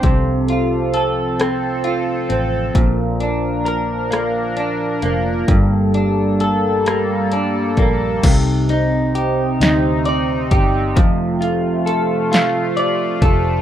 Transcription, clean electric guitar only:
\new Staff \with { instrumentName = "Clean electric guitar" } { \time 6/8 \key c \dorian \tempo 4. = 44 c8 f'8 a'8 c'8 f'8 c'8 | bes,8 d'8 bes'8 bes8 d'8 bes8 | g,8 d'8 a'8 bes8 d'8 bes8 | c8 ees'8 g'8 ees'8 d''8 g'8 |
f8 f'8 a'8 f'8 d''8 a'8 | }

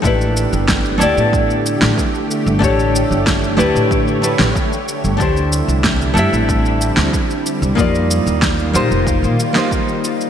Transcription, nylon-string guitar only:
\new Staff \with { instrumentName = "Nylon-string guitar" } { \time 4/4 \key d \major \tempo 4 = 93 <a d' e' g' b'>4. <a d' e' g' d''>2~ <a d' e' g' d''>8 | <a d' e' g' cis''>4. <a d' e' g' b'>4 <a d' e' g' b'>16 r4 r16 | <a d' e' g' c''>4. <a d' e' g' e''>2~ <a d' e' g' e''>8 | <bes ees' f' g' d''>4. <bes ees' f' g' c''>4 r16 <bes ees' f' g' c''>4~ <bes ees' f' g' c''>16 | }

